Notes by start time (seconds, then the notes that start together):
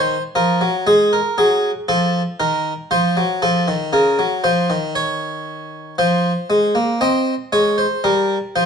Already playing: D#3 C5
0.35 F3 A#4
0.61 F#3
0.87 G#3 G#4
1.13 A#4
1.38 F#3 G#4
1.88 F3 A4
2.40 D#3 A#4
2.91 F3 C5
3.17 F#3
3.42 F3 A4
3.68 D#3
3.93 C#3 A#4
4.19 F#3
4.44 F3 C5
4.70 D#3
4.95 C#5
5.98 F3 C5
6.50 G#3
6.75 A#3
7.01 C4 D#5
7.52 G#3 C#5
7.78 C5
8.04 G3 A#4
8.56 F3 C5